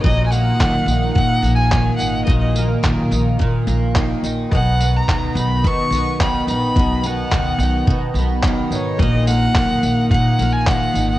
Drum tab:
TB |-x-x-x-x|-x-x-x-x|-x-x-x-x|-x-x-x-x|
CP |--x---x-|--x---x-|--x---x-|--x---x-|
BD |o-o-o-o-|o-o-o-o-|o-o-o-o-|o-o-o-o-|

TB |-x-x-x-x|
CP |--x---x-|
BD |o-o-o-o-|